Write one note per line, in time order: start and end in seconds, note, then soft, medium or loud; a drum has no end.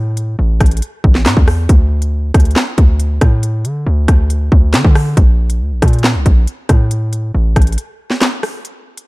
0.00 0.36 A2 loud
0.17 closed hi-hat medium
0.39 0.60 A1 loud
0.60 0.81 A1 loud
0.60 kick medium
0.60 cross-stick loud
0.60 closed hi-hat medium
0.66 closed hi-hat medium
0.71 closed hi-hat medium
0.77 closed hi-hat medium
0.82 closed hi-hat medium
1.04 1.27 A1 loud
1.04 kick loud
1.15 snare medium
1.26 1.36 A2 loud
1.26 snare loud
1.26 clap medium
1.26 closed hi-hat medium
1.37 1.68 E2 loud
1.37 kick loud
1.48 cross-stick medium
1.48 open hi-hat medium
1.69 2.32 D2 loud
1.69 kick loud
1.69 closed hi-hat medium
2.02 closed hi-hat medium
2.34 2.55 D2 loud
2.34 kick medium
2.34 cross-stick loud
2.34 closed hi-hat medium
2.40 closed hi-hat medium
2.45 closed hi-hat medium
2.51 closed hi-hat soft
2.56 snare loud
2.56 clap medium
2.78 3.20 D2 loud
2.78 kick loud
2.78 closed hi-hat medium
3.00 closed hi-hat medium
3.21 3.66 A2 loud
3.21 kick loud
3.21 cross-stick loud
3.21 closed hi-hat medium
3.43 closed hi-hat medium
3.65 3.85 D3 loud
3.65 closed hi-hat medium
3.86 4.07 D2 loud
4.08 4.50 D2 loud
4.08 kick medium
4.08 cross-stick loud
4.08 closed hi-hat medium
4.30 closed hi-hat medium
4.52 4.75 D2 loud
4.52 kick medium
4.73 4.84 D3 loud
4.73 snare loud
4.73 clap medium
4.73 closed hi-hat medium
4.84 5.16 D3 loud
4.84 kick loud
4.95 cross-stick medium
4.95 open hi-hat medium
5.17 5.62 A#1 loud
5.17 kick loud
5.17 closed hi-hat medium
5.50 closed hi-hat medium
5.61 5.73 D2 loud
5.71 5.82 A#1 loud
5.82 6.16 A#2 loud
5.82 kick medium
5.82 cross-stick loud
5.82 closed hi-hat medium
5.88 closed hi-hat medium
5.93 closed hi-hat medium
5.99 closed hi-hat soft
6.04 snare loud
6.04 clap medium
6.15 6.25 C2 loud
6.26 6.47 A#1 loud
6.26 kick loud
6.26 closed hi-hat medium
6.47 closed hi-hat medium
6.69 7.32 A2 loud
6.69 kick loud
6.69 cross-stick medium
6.69 closed hi-hat medium
6.91 closed hi-hat medium
7.13 closed hi-hat medium
7.34 7.55 A1 loud
7.56 7.77 A1 loud
7.56 kick medium
7.56 cross-stick loud
7.56 closed hi-hat medium
7.62 closed hi-hat medium
7.67 closed hi-hat medium
7.72 closed hi-hat medium
7.78 closed hi-hat medium
8.10 snare medium
8.21 snare loud
8.21 clap medium
8.21 closed hi-hat medium
8.43 cross-stick medium
8.43 open hi-hat medium
8.65 closed hi-hat medium
8.97 closed hi-hat medium